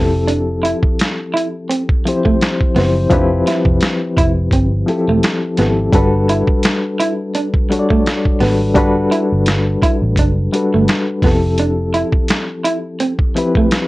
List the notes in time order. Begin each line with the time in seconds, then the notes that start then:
Already playing: F1 F3 C4 E4 G4 A4
0.28 D4, closed hi-hat
0.63 E4, closed hi-hat
0.83 muted fingered electric bass stroke, kick
0.99 snare, closed hi-hat
1.34 E4, closed hi-hat
1.69 C4, closed hi-hat
1.89 kick
2.05 F3 C4 E4 G4 C5, muted clean electric guitar stroke, closed hi-hat
2.25 A3, kick
2.41 snare, closed hi-hat
2.61 kick
2.75 F#1 F3 B3 C4 E4 G4 C5, snare, open hi-hat
3.10 F1 F3 C4 D4 E4 G4 B4, kick, closed hi-hat
3.47 E4, snare, closed hi-hat
3.65 F1, kick
3.81 snare, closed hi-hat
4.17 F1 E4, kick, closed hi-hat
4.51 G1 C4, kick, closed hi-hat
4.86 F3 C4 E4 G4 A4, muted clean electric guitar stroke, closed hi-hat
5.08 E1 A3
5.23 snare, closed hi-hat
5.57 G#1 F3 B3 C4 E4 G4 A4, snare, closed hi-hat
5.92 G1 G3 D4 F#4 A4 B4, kick, closed hi-hat
6.29 E4, closed hi-hat
6.47 muted fingered electric bass stroke, kick
6.63 snare, closed hi-hat
7.00 E4, closed hi-hat
7.35 D4, closed hi-hat
7.54 kick
7.69 G3 D4 F#4 A4 C#5, muted clean electric guitar stroke, closed hi-hat
7.79 D5
7.90 A3, kick
8.06 snare, closed hi-hat
8.25 kick
8.40 G#1 G3 B3 D4 F#4 A4 B4, snare, open hi-hat
8.75 G1 G3 D4 F#4 A4 B4, kick, closed hi-hat
9.11 E4, closed hi-hat
9.32 G1
9.46 snare, closed hi-hat
9.82 E4, muted fingered electric bass stroke, kick, closed hi-hat
10.02 A1
10.16 F#1 D4, kick, closed hi-hat
10.52 G3 D4 F#4 A4 B4, muted clean electric guitar stroke, closed hi-hat
10.74 G1 A3
10.88 snare, closed hi-hat
11.22 F1 F3 B3 C4 E4 G4 A4, kick, snare, open hi-hat
11.58 D4, closed hi-hat
11.94 E4, closed hi-hat
12.13 muted fingered electric bass stroke, kick
12.28 snare, closed hi-hat
12.65 E4, closed hi-hat
13.00 C4, closed hi-hat
13.19 kick
13.35 F3 C4 E4 G4 B4, muted clean electric guitar stroke, closed hi-hat
13.55 A3, kick
13.71 snare, closed hi-hat